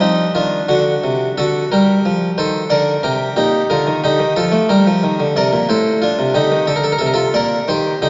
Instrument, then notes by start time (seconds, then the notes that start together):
harpsichord
0.00 F3 C4 D#4
0.35 D#3 D4 F4
0.69 D3 D4 F#4
1.04 C3
1.38 D3 F#4 A4
1.72 G3 G4 A#4
2.05 F3
2.38 D#3 A4 C5
2.70 D3 A#4 D5
3.03 C3 G4 A#4
3.36 A#2 D#4 G4
3.70 D3 F4 A#4
3.87 D#3
4.04 D3 D#4 G4
4.20 D#3
4.36 F3 F4 A4
4.52 A3
4.69 G3 G4 A#4
4.87 F3
5.04 D#3
5.20 D3
5.36 C3 A#4 D5
5.53 A#2
5.69 A2 A4 C5
6.02 D4 F4
6.19 C3
6.34 D3 D#4 G4
6.52 D#3
6.67 D3 A4
6.76 A#4
6.84 A4
6.92 A#4
6.98 C3 A4
7.06 A#4
7.14 F4 A4
7.34 A#2 A#4 D5
7.68 D#3 G4 C5
8.02 D3 D#4 G4